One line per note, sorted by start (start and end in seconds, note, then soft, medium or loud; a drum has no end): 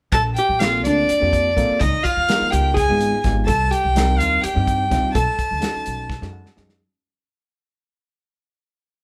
0.12 0.35 A#1 medium
0.12 0.21 A4 medium
0.12 0.23 A5 medium
0.12 kick medium
0.12 closed hi-hat medium
0.36 0.63 G4 medium
0.36 0.61 G5 medium
0.36 closed hi-hat soft
0.49 0.85 A#1 medium
0.60 1.07 A#3 medium
0.60 1.08 C4 medium
0.60 1.08 D4 medium
0.60 1.08 F4 medium
0.60 0.86 F4 medium
0.60 1.08 A4 medium
0.60 0.83 F5 medium
0.60 snare loud
0.60 closed hi-hat medium
0.83 1.07 D2 medium
0.83 1.79 D4 medium
0.83 1.82 D5 medium
0.83 closed hi-hat medium
1.09 muted upright bass stroke soft
1.09 closed hi-hat medium
1.20 1.55 F2 medium
1.20 1.49 A#3 medium
1.20 1.49 C4 medium
1.20 1.49 D4 medium
1.20 1.49 F4 medium
1.20 1.50 G4 medium
1.33 kick medium
1.33 closed hi-hat medium
1.56 1.68 A#1 medium
1.56 1.81 A#3 medium
1.56 1.81 C4 medium
1.56 1.81 D4 medium
1.56 1.82 F4 medium
1.56 1.82 A4 medium
1.56 kick medium
1.56 closed hi-hat medium
1.70 muted upright bass stroke soft
1.79 1.92 C#2 medium
1.79 2.04 D#4 medium
1.79 2.05 D#5 medium
1.79 kick loud
1.79 closed hi-hat medium
2.03 2.52 F4 medium
2.03 2.52 F5 medium
2.03 muted upright bass stroke soft
2.03 kick medium
2.03 closed hi-hat medium
2.16 2.28 F2 medium
2.29 2.76 G#3 medium
2.29 2.76 B3 medium
2.29 2.76 D#4 medium
2.29 2.76 F4 medium
2.29 2.76 A#4 medium
2.29 snare medium
2.29 closed hi-hat medium
2.41 muted upright bass stroke soft
2.51 2.86 C#2 medium
2.51 2.74 G4 medium
2.51 2.75 G5 medium
2.51 closed hi-hat medium
2.74 3.26 G#4 medium
2.74 3.27 G#5 medium
2.74 kick medium
2.74 closed hi-hat medium
2.78 snare soft
2.89 3.11 G#1 medium
2.89 3.17 G#3 medium
2.89 3.17 B3 medium
2.89 3.17 D#4 medium
2.89 3.17 F4 medium
2.89 3.18 G#4 medium
3.01 closed hi-hat soft
3.24 3.47 G#1 medium
3.24 3.49 G#3 medium
3.24 3.49 B3 medium
3.24 3.49 D#4 medium
3.24 3.49 F4 medium
3.24 3.49 G4 medium
3.24 kick medium
3.24 snare soft
3.24 closed hi-hat soft
3.46 3.70 C2 medium
3.46 3.71 A4 medium
3.46 3.72 A5 medium
3.46 kick medium
3.46 closed hi-hat medium
3.71 4.20 G4 medium
3.71 4.19 G5 medium
3.71 closed hi-hat soft
3.84 4.21 C2 medium
3.96 4.42 G3 medium
3.96 4.43 C4 medium
3.96 4.42 D4 medium
3.96 4.43 D#4 medium
3.96 4.43 A#4 medium
3.96 snare loud
3.96 closed hi-hat medium
4.18 4.42 D#2 medium
4.18 4.43 F4 medium
4.18 4.43 F5 medium
4.18 closed hi-hat medium
4.41 5.15 G4 medium
4.41 5.13 G5 medium
4.41 muted upright bass stroke soft
4.41 closed hi-hat medium
4.55 4.89 G2 medium
4.55 4.83 G3 medium
4.55 4.83 C4 medium
4.55 4.83 D4 medium
4.55 4.84 D#4 medium
4.55 4.84 G4 medium
4.67 kick medium
4.67 closed hi-hat medium
4.90 5.02 C2 medium
4.90 5.15 G3 medium
4.90 5.15 C4 medium
4.90 5.15 D4 medium
4.90 5.15 D#4 medium
4.90 5.16 F4 medium
4.90 kick medium
4.90 snare soft
4.90 closed hi-hat medium
5.04 muted upright bass stroke soft
5.13 5.26 B1 medium
5.13 6.53 A4 medium
5.13 6.52 A5 medium
5.13 kick medium
5.13 closed hi-hat medium
5.39 muted upright bass stroke soft
5.39 kick medium
5.39 closed hi-hat medium
5.51 5.62 D#2 medium
5.61 6.08 A3 medium
5.61 6.08 C#4 medium
5.61 6.08 D#4 medium
5.61 6.08 F#4 medium
5.61 6.08 A4 medium
5.61 snare loud
5.61 closed hi-hat medium
5.75 muted upright bass stroke soft
5.86 6.19 B1 medium
5.86 closed hi-hat medium
6.10 kick medium
6.10 snare soft
6.21 6.44 F#2 medium
6.21 6.49 G#3 medium
6.21 6.49 C#4 medium
6.21 6.50 D#4 medium
6.21 6.50 F#4 medium
6.21 6.50 A4 medium
6.21 snare soft
6.33 6.55 F#5 medium
6.46 snare medium
6.56 6.79 F#2 medium
6.56 6.80 G#3 medium
6.56 6.81 C#4 medium
6.56 6.81 D#4 medium
6.56 6.81 F#4 medium
6.56 6.81 G#4 medium
6.56 6.79 D#5 medium
6.56 snare medium
6.69 snare medium